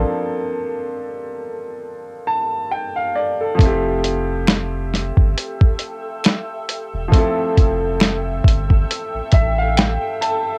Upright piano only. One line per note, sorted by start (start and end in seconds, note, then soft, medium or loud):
0.00 3.08 F3 medium
0.00 3.10 A#3 medium
0.00 3.11 C4 medium
0.00 3.12 D4 medium
0.00 2.25 A4 medium
2.27 2.68 A5 medium
2.72 2.94 G5 medium
2.96 3.55 F5 medium
3.16 3.39 D5 medium
3.41 3.82 A4 medium
3.55 7.06 F3 medium
3.55 7.07 A3 medium
3.60 7.08 C4 medium
3.60 7.10 E4 medium
3.65 7.11 G4 medium
7.08 10.58 F3 medium
7.08 10.58 A3 medium
7.13 10.58 C4 medium
7.13 10.58 E4 medium
7.18 10.58 A4 medium
9.34 9.56 E5 medium
9.58 9.76 F5 medium
9.77 10.18 G5 medium
10.21 10.58 A5 medium